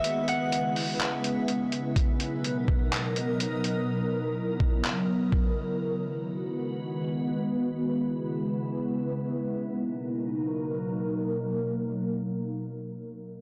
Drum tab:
HH |xxxoxxxx|xxx-xxxx|--------|--------|
CP |----x---|----x---|----x---|--------|
BD |--------|o--o----|---o--o-|--------|

HH |--------|--------|--------|
CP |--------|--------|--------|
BD |--------|--------|--------|